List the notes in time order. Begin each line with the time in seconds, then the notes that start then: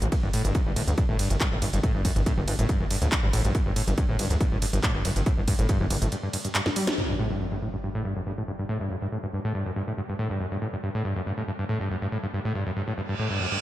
0.02 G1 A1, closed hi-hat
0.12 G2, kick, closed hi-hat, ride
0.23 G1 G2
0.33 A2, open hi-hat, ride
0.45 G1 G2, closed hi-hat
0.55 F#2, kick, closed hi-hat, ride
0.66 G1 G2
0.76 G1 A2, open hi-hat, ride
0.88 D2 G2, closed hi-hat
0.98 G2, kick, closed hi-hat, ride
1.09 G1 A2
1.19 G2, open hi-hat, ride
1.30 G1 F#2, closed hi-hat
1.41 G2, kick, clap, closed hi-hat, ride
1.52 G1 A2
1.62 G1 G2, open hi-hat, ride
1.73 G1 G2, closed hi-hat
1.83 A2, kick, closed hi-hat, ride
1.95 G1 G2
2.05 F#2, kick, open hi-hat, ride
2.16 G1 G2, closed hi-hat
2.26 A2, kick, closed hi-hat, ride
2.37 G1 G2
2.48 G1 G2, open hi-hat, ride
2.59 G1 A2, closed hi-hat
2.69 G2, kick, closed hi-hat, ride
2.80 G1 F#2
2.91 G2, open hi-hat, ride
3.02 D2 A2, closed hi-hat
3.12 G2, kick, clap, closed hi-hat, ride
3.23 A1 G2
3.33 A1 A2, open hi-hat, ride
3.45 A1 G2, closed hi-hat
3.55 kick, closed hi-hat, ride
3.66 G1 G2
3.76 A2, open hi-hat, ride
3.87 G1 G2, closed hi-hat
3.98 G2, kick, closed hi-hat, ride
4.09 G1 A2
4.19 G1 G2, open hi-hat, ride
4.30 D2 F#2, closed hi-hat
4.40 G2, kick, closed hi-hat, ride
4.52 G1 A2
4.62 G2, open hi-hat, ride
4.73 G1 G2, closed hi-hat
4.83 A2, kick, clap, closed hi-hat, ride
4.95 G1 G2
5.05 G1 F#2, open hi-hat, ride
5.16 G1 G2, closed hi-hat
5.26 A2, kick, closed hi-hat, ride
5.38 G1 G2
5.48 G2, kick, open hi-hat, ride
5.59 G1 A2, closed hi-hat
5.69 G2, kick, closed hi-hat, ride
5.80 G1 F#2
5.90 G1 G2, open hi-hat, ride
6.02 G1 A2, closed hi-hat
6.12 G2, closed hi-hat, ride
6.23 G2
6.33 G2, open hi-hat, ride
6.45 G2, closed hi-hat
6.55 G2, clap, closed hi-hat, ride
6.66 G2, snare
6.76 G3, open hi-hat, ride
6.87 A#3, snare, closed hi-hat
6.98 G2, impact
7.09 G2
7.19 A2
7.30 G2
7.41 F#2
7.52 G2
7.62 A2
7.73 G2
7.83 G2
7.95 A2
8.05 G2
8.16 F#2
8.26 G2
8.38 A2
8.48 G2
8.59 G2
8.69 A2
8.80 G2
8.90 F#2
9.02 G2
9.12 A2
9.23 G2
9.33 G2
9.45 A2
9.55 G2
9.66 F#2
9.76 G2
9.87 A2
9.98 G2
10.09 G2
10.19 A2
10.30 G2
10.40 F#2
10.52 G2
10.62 A2
10.73 G2
10.83 G2
10.95 A2
11.05 G2
11.16 F#2
11.26 G2
11.38 A2
11.48 G2
11.59 G2
11.69 A2
11.80 G2
11.91 F#2
12.02 G2
12.12 A2
12.23 G2
12.34 G2
12.45 A2
12.55 G2
12.66 F#2
12.76 G2
12.88 A2
12.98 G2, reverse cymbal
13.09 G2
13.19 A2
13.30 G2
13.40 F#2
13.52 G2